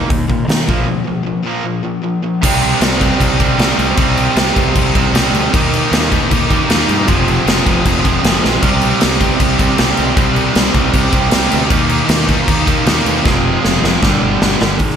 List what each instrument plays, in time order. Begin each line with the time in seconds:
0.09 fingered electric bass D#2, distorted electric guitar D#3 A#3, kick, open hi-hat
0.28 fingered electric bass A#2, distorted electric guitar D#3 A#3, kick
0.48 fingered electric bass D#3, distorted electric guitar D#3 A#3, snare, open hi-hat
0.66 fingered electric bass A#1, distorted electric guitar A#2 F3 A#3, kick
0.85 distorted electric guitar A#2 F3
1.04 distorted electric guitar A#2 F3
1.23 distorted electric guitar A#2 F3
1.43 distorted electric guitar A#2 F3 A#3
1.63 distorted electric guitar A#2 F3
1.83 distorted electric guitar A#2 F3
2.02 distorted electric guitar A#2 F3
2.22 distorted electric guitar A#2 F3
2.42 fingered electric bass C2, distorted electric guitar C3 G3 C4 D#4, kick, crash
2.61 distorted electric guitar C3 G3 C4 D#4, crash
2.80 fingered electric bass C2, distorted electric guitar C3 G3 C4 D#4, snare, crash
3.00 distorted electric guitar C3 G3 C4 D#4, kick, crash
3.19 fingered electric bass C2, distorted electric guitar C3 G3 C4 D#4, kick, crash
3.39 distorted electric guitar C3 G3 C4 D#4, kick, crash
3.58 fingered electric bass C2, distorted electric guitar C3 G3 C4 D#4, snare, crash
3.77 fingered electric bass C2, distorted electric guitar C3 G3 C4 D#4, crash
3.95 fingered electric bass C2, distorted electric guitar C3 G3 C4 D#4, kick, crash
4.15 distorted electric guitar C3 G3 C4 D#4, crash
4.35 fingered electric bass C2, distorted electric guitar C3 G3 C4 D#4, snare, crash
4.55 fingered electric bass C2, distorted electric guitar C3 G3 C4 D#4, kick, crash
4.75 fingered electric bass C2, distorted electric guitar C3 G3 C4 D#4, kick, crash
4.93 fingered electric bass C2, distorted electric guitar C3 G3 C4 D#4, kick, crash
4.97 overdriven electric guitar C3
5.13 fingered electric bass C2, distorted electric guitar C3 G3 C4 D#4, snare, crash
5.32 fingered electric bass D2, distorted electric guitar C3 G3 C4 D#4, crash
5.52 fingered electric bass D#2, distorted electric guitar D#3 G3 A#3 D#4 G4, kick, crash
5.71 distorted electric guitar D#3 G3 A#3 D#4 G4, crash
5.91 fingered electric bass D#2, distorted electric guitar D#3 G3 A#3 D#4 G4, snare, crash
6.10 distorted electric guitar D#3 G3 A#3 D#4 G4, kick, crash
6.31 fingered electric bass D#2, distorted electric guitar D#3 G3 A#3 D#4 G4, kick, crash
6.49 distorted electric guitar D#3 G3 A#3 D#4 G4, kick, crash
6.69 fingered electric bass D#2, distorted electric guitar D#3 G3 A#3 D#4 G4, snare, crash
6.89 fingered electric bass G2, distorted electric guitar D#3 G3 A#3 D#4 G4, crash
7.07 fingered electric bass F1, distorted electric guitar F2 C3 F3 G#3 C4 G#4, kick, crash
7.27 distorted electric guitar F2 C3 F3 G#3 C4 G#4, crash
7.46 fingered electric bass F1, distorted electric guitar F2 C3 F3 G#3 C4 G#4, snare, crash
7.66 fingered electric bass F1, distorted electric guitar F2 C3 F3 G#3 C4 G#4, kick, crash
7.84 fingered electric bass F1, distorted electric guitar F2 C3 F3 G#3 C4 G#4, kick, crash
8.03 fingered electric bass F1, distorted electric guitar F2 C3 F3 G#3 C4 G#4, kick, crash
8.07 overdriven electric guitar F2
8.22 fingered electric bass F1, distorted electric guitar F2 C3 F3 G#3 C4 G#4, snare, crash
8.41 fingered electric bass A#1, distorted electric guitar F2 C3 F3 G#3 C4 G#4, snare
8.62 fingered electric bass C2, distorted electric guitar C3 G3 C4 D#4 G4, kick, crash
8.81 distorted electric guitar C3 G3 C4 D#4 G4, crash
9.01 fingered electric bass C2, distorted electric guitar C3 G3 C4 D#4 G4, snare, crash
9.20 distorted electric guitar C3 G3 C4 D#4 G4, kick, crash
9.38 fingered electric bass C2, distorted electric guitar C3 G3 C4 D#4 G4, kick, crash
9.57 distorted electric guitar C3 G3 C4 D#4 G4, kick, crash
9.61 overdriven electric guitar C3
9.77 fingered electric bass C2, distorted electric guitar C3 G3 C4 D#4 G4, snare, crash
9.96 fingered electric bass C2, distorted electric guitar C3 G3 C4 D#4 G4, crash
10.15 fingered electric bass C2, distorted electric guitar C3 G3 C4 D#4 G4, kick, crash
10.33 distorted electric guitar C3 G3 C4 D#4 G4, crash
10.53 fingered electric bass C2, distorted electric guitar C3 G3 C4 D#4 G4, snare, crash
10.73 fingered electric bass C2, distorted electric guitar C3 G3 C4 D#4 G4, kick, crash
10.92 fingered electric bass C2, distorted electric guitar C3 G3 C4 D#4 G4, kick, crash
11.12 fingered electric bass C2, distorted electric guitar C3 G3 C4 D#4 G4, kick, crash
11.31 fingered electric bass C2, distorted electric guitar C3 G3 C4 D#4 G4, snare, crash
11.50 fingered electric bass D2, distorted electric guitar C3 G3 C4 D#4 G4, crash
11.70 fingered electric bass D#2, distorted electric guitar D#3 G3 A#3 D#4 G4, kick, crash
11.88 distorted electric guitar D#3 G3 A#3 D#4 G4, crash
12.07 fingered electric bass D#2, distorted electric guitar D#3 G3 A#3 D#4 G4, snare, crash
12.25 distorted electric guitar D#3 G3 A#3 D#4 G4, kick, crash
12.46 fingered electric bass D#2, distorted electric guitar D#3 G3 A#3 D#4 G4, kick, crash
12.65 distorted electric guitar D#3 G3 A#3 D#4 G4, kick, crash
12.84 fingered electric bass D#2, distorted electric guitar D#3 G3 A#3 D#4 G4, snare, crash
13.04 fingered electric bass D#2, distorted electric guitar D#3 G3 A#3 D#4 G4, crash
13.23 fingered electric bass F1, distorted electric guitar F2 C3 F3 G#3 C4 G#4, kick, snare
13.43 distorted electric guitar F2 C3 F3 G#3 C4 G#4
13.63 fingered electric bass F1, distorted electric guitar F2 C3 F3 G#3 C4 G#4, snare
13.82 fingered electric bass F1, distorted electric guitar F2 C3 F3 G#3 C4 G#4, snare
14.01 fingered electric bass G1, distorted electric guitar G2 D3 G3 B3 D4 G4, kick, snare
14.22 fingered electric bass G1, distorted electric guitar G2 D3 G3 B3 D4 G4
14.41 fingered electric bass G1, distorted electric guitar G2 D3 G3 B3 D4 G4, snare
14.60 fingered electric bass G1, distorted electric guitar G2 D3 G3 B3 D4 G4, snare
14.79 fingered electric bass G#1, distorted electric guitar G#2 D#3 G#3, kick, open hi-hat
14.90 snare